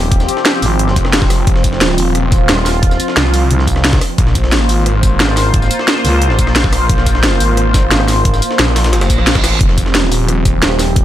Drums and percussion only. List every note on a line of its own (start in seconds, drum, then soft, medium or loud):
0.12 kick loud
0.12 closed hi-hat medium
0.20 snare soft
0.20 tambourine soft
0.28 closed hi-hat medium
0.28 tambourine medium
0.37 snare soft
0.45 snare loud
0.45 closed hi-hat medium
0.45 closed hi-hat loud
0.54 cross-stick soft
0.62 snare soft
0.62 closed hi-hat medium
0.62 open hi-hat medium
0.62 tambourine medium
0.79 closed hi-hat medium
0.88 snare soft
0.96 kick medium
0.96 closed hi-hat medium
0.96 tambourine medium
1.05 cross-stick soft
1.05 snare medium
1.13 snare loud
1.13 closed hi-hat loud
1.13 closed hi-hat medium
1.22 kick loud
1.22 snare soft
1.22 closed hi-hat soft
1.30 cross-stick medium
1.30 snare medium
1.30 closed hi-hat medium
1.30 open hi-hat medium
1.30 tambourine medium
1.47 kick loud
1.47 closed hi-hat medium
1.56 snare medium
1.64 kick medium
1.64 closed hi-hat medium
1.64 tambourine medium
1.73 snare medium
1.81 snare loud
1.81 closed hi-hat loud
1.81 closed hi-hat medium
1.90 cross-stick soft
1.98 closed hi-hat medium
1.98 open hi-hat medium
1.98 tambourine medium
2.15 cross-stick soft
2.15 closed hi-hat medium
2.32 kick loud
2.32 closed hi-hat medium
2.32 tambourine medium
2.49 snare loud
2.49 closed hi-hat medium
2.57 cross-stick soft
2.66 snare soft
2.66 open hi-hat medium
2.66 tambourine medium
2.83 kick loud
2.83 closed hi-hat medium
2.91 snare soft
2.91 tambourine soft
3.00 closed hi-hat medium
3.00 tambourine medium
3.08 snare medium
3.17 snare loud
3.17 closed hi-hat medium
3.25 cross-stick soft
3.34 snare soft
3.34 closed hi-hat medium
3.34 open hi-hat medium
3.34 tambourine medium
3.51 closed hi-hat medium
3.59 snare soft
3.67 kick medium
3.67 closed hi-hat medium
3.67 tambourine medium
3.76 cross-stick soft
3.76 snare medium
3.84 snare loud
3.84 closed hi-hat medium
3.93 kick loud
3.93 snare loud
3.93 snare soft
3.93 closed hi-hat medium
4.01 cross-stick medium
4.01 snare medium
4.01 closed hi-hat medium
4.01 open hi-hat medium
4.01 tambourine medium
4.18 kick loud
4.18 closed hi-hat medium
4.27 snare medium
4.35 kick medium
4.35 closed hi-hat medium
4.35 tambourine medium
4.44 snare medium
4.52 snare loud
4.52 closed hi-hat medium
4.61 cross-stick soft
4.69 closed hi-hat medium
4.69 open hi-hat medium
4.69 tambourine medium
4.86 cross-stick soft
4.86 closed hi-hat medium
5.03 kick loud
5.03 closed hi-hat medium
5.03 tambourine medium
5.20 snare loud
5.20 closed hi-hat medium
5.28 cross-stick soft
5.37 snare soft
5.37 open hi-hat medium
5.37 tambourine medium
5.54 kick loud
5.54 closed hi-hat medium
5.62 snare soft
5.62 tambourine soft
5.71 closed hi-hat medium
5.71 tambourine medium
5.79 snare soft
5.88 snare loud
5.88 closed hi-hat loud
5.88 closed hi-hat medium
5.96 cross-stick soft
6.05 snare soft
6.05 closed hi-hat medium
6.05 open hi-hat medium
6.05 tambourine medium
6.22 closed hi-hat medium
6.30 snare soft
6.39 kick medium
6.39 closed hi-hat medium
6.39 tambourine medium
6.47 cross-stick soft
6.47 snare medium
6.56 snare loud
6.56 closed hi-hat medium
6.64 kick loud
6.64 snare soft
6.64 closed hi-hat soft
6.73 cross-stick medium
6.73 snare medium
6.73 closed hi-hat medium
6.73 open hi-hat medium
6.73 tambourine medium
6.89 kick loud
6.89 closed hi-hat loud
6.89 closed hi-hat medium
6.98 snare medium
7.06 kick medium
7.06 closed hi-hat medium
7.06 tambourine medium
7.15 snare medium
7.23 snare loud
7.23 closed hi-hat loud
7.23 closed hi-hat medium
7.32 cross-stick soft
7.40 closed hi-hat medium
7.40 open hi-hat medium
7.40 tambourine medium
7.57 cross-stick soft
7.57 closed hi-hat medium
7.74 kick loud
7.74 snare loud
7.74 closed hi-hat medium
7.74 tambourine medium
7.91 snare loud
7.91 closed hi-hat medium
8.00 cross-stick soft
8.08 snare soft
8.08 open hi-hat medium
8.08 tambourine medium
8.25 kick loud
8.25 closed hi-hat medium
8.34 snare soft
8.34 tambourine soft
8.42 closed hi-hat medium
8.42 tambourine medium
8.51 snare medium
8.59 snare loud
8.59 closed hi-hat loud
8.59 closed hi-hat medium
8.68 cross-stick soft
8.76 snare loud
8.76 closed hi-hat medium
8.76 open hi-hat medium
8.76 tambourine medium
8.84 snare loud
8.84 closed hi-hat medium
8.93 snare loud
8.93 closed hi-hat medium
8.93 closed hi-hat loud
9.01 snare loud
9.01 closed hi-hat medium
9.10 kick medium
9.10 closed hi-hat medium
9.10 tambourine medium
9.18 cross-stick soft
9.18 snare soft
9.27 snare loud
9.27 closed hi-hat medium
9.27 closed hi-hat loud
9.35 kick loud
9.35 snare loud
9.35 snare soft
9.35 closed hi-hat medium
9.35 tambourine soft
9.44 cross-stick medium
9.44 snare loud
9.44 closed hi-hat medium
9.44 open hi-hat medium
9.44 tambourine medium
9.61 kick loud
9.61 closed hi-hat medium
9.61 closed hi-hat loud
9.69 snare medium
9.78 kick medium
9.78 closed hi-hat medium
9.78 tambourine medium
9.86 snare medium
9.95 snare loud
9.95 closed hi-hat medium
9.95 closed hi-hat loud
10.03 cross-stick soft
10.12 closed hi-hat medium
10.12 open hi-hat medium
10.12 tambourine medium
10.29 cross-stick soft
10.29 closed hi-hat medium
10.45 kick loud
10.45 closed hi-hat medium
10.45 tambourine medium
10.62 snare loud
10.62 closed hi-hat loud
10.62 closed hi-hat medium
10.71 cross-stick medium
10.79 snare soft
10.79 open hi-hat medium
10.79 tambourine medium
10.96 kick loud
10.96 closed hi-hat loud
10.96 closed hi-hat medium